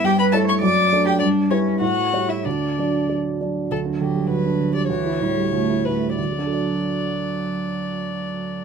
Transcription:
X:1
M:2/4
L:1/16
Q:1/4=96
K:D
V:1 name="Violin"
g b a c' d'3 g | d2 c2 f3 e | d4 z4 | A2 G2 B3 d |
c6 B2 | d8- | d8 |]
V:2 name="Cello"
G B A c d3 G | D2 C2 F3 E | D4 z4 | F,8 |
E,2 G,2 A,2 z2 | F,8- | F,8 |]
V:3 name="Grand piano" clef=bass
G,,2 [A,Ec]2 F,,2 [A,Dd]2 | G,,2 [G,EB]2 A,,2 [G,Ec]2 | D,,2 [F,Dd]2 [F,Dd]2 [F,Dd]2 | D,, D D, G, D,, D D, G, |
D,, E A,, G, D,, E A,, G, | [D,,D,F,DAd]8- | [D,,D,F,DAd]8 |]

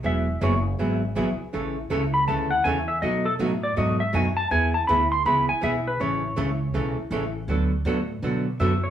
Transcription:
X:1
M:4/4
L:1/16
Q:"Swing" 1/4=161
K:A
V:1 name="Electric slide guitar"
e4 c2 z8 z2 | z6 b2 a2 f2 g2 e2 | ^d2 A2 z2 =d2 ^d2 e2 g2 a2 | g2 a2 b2 =c'2 b2 g2 e2 B2 |
c8 z8 | z12 e2 c2 |]
V:2 name="Hollow-body jazz guitar"
[E,F,B,EG]2 z2 [E,F,B,EG] z3 [E,F,B,EG]2 z2 [E,F,B,EG] z3 | [C,E,A,CA]2 z2 [C,E,A,CA] z3 [C,E,A,CA]2 z2 [C,E,A,CA] z3 | [B,,F,A,^DF]2 z2 [B,,F,A,DF] z3 [B,,F,A,DF]2 z2 [B,,F,A,DF] z3 | [E,B,EG]2 z2 [E,B,EG] z3 [E,B,EG]2 z2 [E,B,EG] z3 |
[C,E,A,CA]2 z2 [C,E,A,CA] z3 [C,E,A,CA]2 z2 [C,E,A,CA] z3 | [D,F,B,FA]2 z2 [D,F,B,FA] z3 [D,F,B,FA]2 z2 [D,F,B,FA] z3 |]
V:3 name="Upright bass" clef=bass
E,,,4 F,,,4 G,,,4 _B,,,2 z2 | A,,,4 C,,4 D,,4 E,,4 | B,,4 A,,4 G,,4 F,,4 | E,,4 D,,4 C,,2 z2 B,,,4 |
A,,,4 C,,4 B,,,2 z2 A,,,4 | D,,4 A,,4 B,,4 F,,4 |]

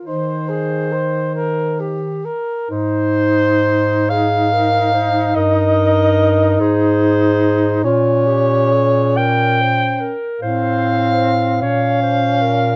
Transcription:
X:1
M:6/8
L:1/16
Q:3/8=48
K:Ab
V:1 name="Alto saxophone"
E8- E z3 | c6 f6 | e6 c6 | d6 g4 z2 |
f6 f6 |]
V:2 name="Clarinet"
c8- c2 z2 | z6 A2 B2 c2 | B6 A6 | F2 G2 A2 B2 c2 B2 |
c4 z2 d2 c2 B2 |]
V:3 name="Tenor saxophone"
c2 A2 c2 B2 G2 B2 | E12- | E12 | D8- D2 z2 |
C6 D6 |]
V:4 name="Bass clarinet" clef=bass
E,8- E,2 z2 | A,,12 | G,,6 A,,6 | B,,8- B,,2 z2 |
=A,,6 B,,6 |]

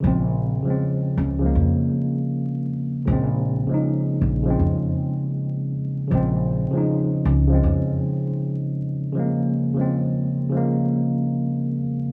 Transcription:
X:1
M:4/4
L:1/16
Q:"Swing 16ths" 1/4=79
K:Bbm
V:1 name="Tine electric piano" clef=bass
[D,F,A,C]3 [D,F,A,C]3 z [D,F,A,B,]6- [D,F,A,B,] z2 | [D,F,A,C]3 [D,F,A,E]3 z [D,F,A,C]6- [D,F,A,C] z2 | [D,F,A,C]3 [D,F,A,E]3 z [D,F,A,C]6- [D,F,A,C] z2 | [D,F,A,B,]3 [D,F,A,C]3 z [D,F,A,B,]6- [D,F,A,B,] z2 |]
V:2 name="Upright bass" clef=bass
B,,,3 z3 D,,2 F,,2 z6 | B,,,3 z3 B,,,2 F,,2 z6 | B,,,3 z3 D,,2 F,,2 z6 | z16 |]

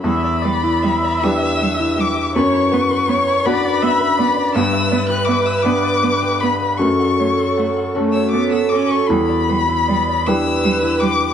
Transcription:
X:1
M:6/8
L:1/16
Q:3/8=53
K:Edor
V:1 name="Violin"
b6 e'4 d'2 | c'6 b6 | e'3 f' d' e' d'4 b2 | c'6 z e' d' e' d' c' |
b6 e'4 d'2 |]
V:2 name="Viola"
e2 d2 e8 | c2 B2 c2 d2 e2 d2 | B12 | A8- A z3 |
z6 B6 |]
V:3 name="Harp"
E d B E d d E B G E G G | B b f B b b B f d B d d | G e d G e e G d B G B B | F f c F f f F c A F A A |
E d B E d d E B G E G G |]
V:4 name="Grand piano"
E,,6 [DGB]6 | F,,6 [DFB]6 | G,,6 [B,DB]6 | F,,6 [CFA]6 |
E,,6 [DGB]6 |]
V:5 name="Cello"
G,2 G,2 G,2 G,2 G,2 G,2 | B,2 B,2 B,2 B,2 B,2 B,2 | B,2 B,2 B,2 B,2 B,2 B,2 | A,2 A,2 A,2 A,2 B,2 C2 |
G,2 G,2 G,2 G,2 G,2 G,2 |]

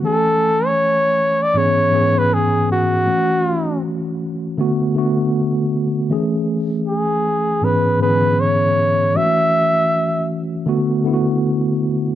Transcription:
X:1
M:4/4
L:1/16
Q:"Swing 16ths" 1/4=79
K:A
V:1 name="Flugelhorn"
A3 c4 d c3 B G2 F2- | F4 z12 | z4 G4 B2 B2 c4 | e6 z8 z2 |]
V:2 name="Tine electric piano"
[E,A,C=G^g]8 [G,,E,B,C^G]2 [G,,E,B,CG]6 | [E,A,CF]8 [D,A,B,F]2 [D,A,B,F]6 | [E,A,CG]8 [G,,E,B,CG]2 [G,,D,E,B,CG]6 | [E,G,A,CF]8 [D,A,B,F]2 [D,A,B,EF]6 |]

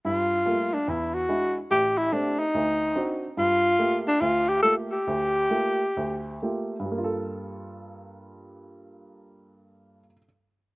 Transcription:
X:1
M:4/4
L:1/8
Q:"Swing" 1/4=137
K:Gm
V:1 name="Tenor saxophone"
F3 D =E ^F2 z | G =E D _E4 z | F3 D F G A G- | G6 z2 |
z8 | z8 |]
V:2 name="Grand piano"
G,,2 [G,A,B,F] z =E,,2 [^G,D=E] z | A,,,2 [A,CG] z D,,2 [CDE^F] z | G,,2 [A,B,FG] z D,,2 [A,B,FG] z | D,,2 [A,B,FG] z D,,2 [A,B,FG] z |
[G,,G,B,FA]8- | [G,,G,B,FA]8 |]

